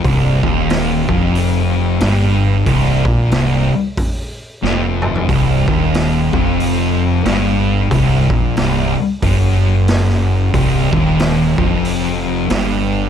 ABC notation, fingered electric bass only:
X:1
M:4/4
L:1/8
Q:"Swing" 1/4=92
K:Dblyd
V:1 name="Fingered electric bass" clef=bass
C,,, E,,,2 F,,,3 G,,,2 | C,,, B,,, C,,, z3 F,,,2 | C,,, E,,,2 F,,,3 G,,,2 | C,,, B,,, C,,, z ^F,,,4 |
C,,, E,,,2 F,,,3 G,,,2 |]